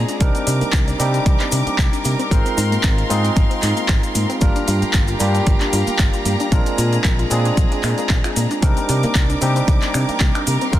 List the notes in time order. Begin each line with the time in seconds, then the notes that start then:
Already playing: G#3 C4 D4 F4 G#4 D5 A#5
0.09 D4, closed hi-hat, cabasa
0.20 C2 G3 A#3 C4 D4 D#4 A#4 D6, kick, closed hi-hat, cabasa
0.35 C4, closed hi-hat, cabasa
0.47 C3 D4, open hi-hat, cabasa
0.61 A#3, muted fingered electric bass stroke, closed hi-hat, cabasa
0.73 C2 C4, kick, clap, closed hi-hat, cabasa
0.88 D4, closed hi-hat, cabasa
0.99 C3 G3 A#3 C4 D4 D#4 G4, open hi-hat, cabasa
1.14 C4, closed hi-hat, cabasa
1.26 C2 A#3, kick, closed hi-hat, cabasa
1.40 C4, clap, closed hi-hat
1.52 C3 D4, open hi-hat, cabasa
1.67 A#3, muted fingered electric bass stroke, closed hi-hat, cabasa
1.78 C2 C4, kick, clap, closed hi-hat, cabasa
1.93 D4, closed hi-hat, cabasa
2.05 C3 A#3, open hi-hat, cabasa
2.19 C4, closed hi-hat, cabasa
2.31 G#1 G#3 A#3 C4 D#4 F4 A#4 F5 C6, kick, closed hi-hat, cabasa
2.45 C4, closed hi-hat, cabasa
2.57 G#2 D#4, open hi-hat, cabasa
2.72 A#3, closed hi-hat, cabasa
2.83 G#1 C4, kick, clap, closed hi-hat, cabasa
2.98 D#4, closed hi-hat
3.09 G#2 G#3 A#3 C4 D#4 F4 G#4, open hi-hat, cabasa
3.24 C4, closed hi-hat, cabasa
3.36 G#1 A#3, kick, closed hi-hat, cabasa
3.50 C4, closed hi-hat
3.62 G#2 D#4, clap, open hi-hat, cabasa
3.77 A#3, closed hi-hat, cabasa
3.89 G#1 C4, kick, clap, closed hi-hat, cabasa
4.03 D#4, closed hi-hat, cabasa
4.15 G#2 A#3, open hi-hat, cabasa
4.29 C4, closed hi-hat, cabasa
4.40 G1 G3 A#3 D4 F4 G4 A#4 F5 A#5, kick, closed hi-hat, cabasa
4.56 D4, closed hi-hat, cabasa
4.68 G2 F4, open hi-hat, cabasa
4.82 A#3, muted fingered electric bass stroke, closed hi-hat, cabasa
4.93 G1 D4, kick, clap, closed hi-hat, cabasa
5.08 F4, closed hi-hat, cabasa
5.19 G2 G3 A#3 D4 F4 G4, open hi-hat, cabasa
5.35 D4, closed hi-hat, cabasa
5.46 G1 A#3, kick, closed hi-hat, cabasa
5.60 D4, clap, closed hi-hat
5.73 G2 F4, open hi-hat, cabasa
5.87 A#3, muted fingered electric bass stroke, closed hi-hat, cabasa
5.99 G1 D4, kick, clap, closed hi-hat, cabasa
6.14 F4, closed hi-hat, cabasa
6.25 G2 A#3, open hi-hat, cabasa
6.40 D4, closed hi-hat, cabasa
6.51 A#1 G#3 A#3 C4 D4 F4 G#4 A#4 D5, kick, closed hi-hat, cabasa
6.66 D4, closed hi-hat, cabasa
6.78 A#2 F4, open hi-hat, cabasa
6.93 A#3, closed hi-hat, cabasa
7.04 A#1 A#3, kick, clap, closed hi-hat, cabasa
7.19 F4, closed hi-hat
7.30 A#2 G#3 A#3 C4 D4 F4 G#4, open hi-hat, cabasa
7.45 D4, closed hi-hat, cabasa
7.57 A#1 A#3, kick, closed hi-hat, cabasa
7.72 D4, closed hi-hat
7.83 A#2 F4, finger snap, clap, open hi-hat, cabasa
7.98 A#3, closed hi-hat, cabasa
8.09 A#1 A#3, kick, clap, closed hi-hat, cabasa
8.24 F4, finger snap, closed hi-hat, cabasa
8.36 A#2 A#3, open hi-hat, cabasa
8.51 D4, closed hi-hat, cabasa
8.62 C2 G3 A#3 C4 D4 D#4 A#4 D6, kick, closed hi-hat, cabasa
8.77 C4, closed hi-hat, cabasa
8.89 C3 D4, open hi-hat, cabasa
9.03 A#3, muted fingered electric bass stroke, closed hi-hat, cabasa
9.15 C2 A#3, kick, clap, closed hi-hat, cabasa
9.30 D4, closed hi-hat, cabasa
9.41 C3 G3 A#3 C4 D4 D#4 G4, open hi-hat, cabasa
9.56 C4, closed hi-hat, cabasa
9.68 C2 A#3, kick, closed hi-hat, cabasa
9.82 C4, clap, closed hi-hat
9.94 C3 D4, finger snap, open hi-hat, cabasa
10.09 A#3, muted fingered electric bass stroke, closed hi-hat, cabasa
10.20 C2 A#3, kick, clap, closed hi-hat, cabasa
10.35 D4, finger snap, closed hi-hat, cabasa
10.47 C3 A#3, open hi-hat, cabasa
10.61 C4, closed hi-hat, cabasa
10.72 G#1 G#3 A#3 C4 D#4 F4 A#4 F5 C6, kick, closed hi-hat, cabasa